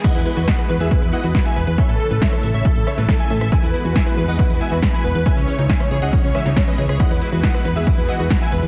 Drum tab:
CC |x---------------|----------------|----------------|----------------|
RD |----------------|----------------|----------------|----------------|
HH |xxoxxxoxxxoxxxox|xxoxxxoxxxoxxxox|xxoxxxoxxxoxxxox|xxoxxxoxxooxxxox|
SD |r---or------o---|r---or----roo--r|r---or------o---|r---or----roo--r|
BD |o---o---o---o---|o---o---o---o---|o---o---o---o---|o---o---o---o---|

CC |----------------|
RD |x-x-x-x-x-x-x-x-|
HH |xxoxxxoxxxoxxxox|
SD |r---or------o---|
BD |o---o---o---o---|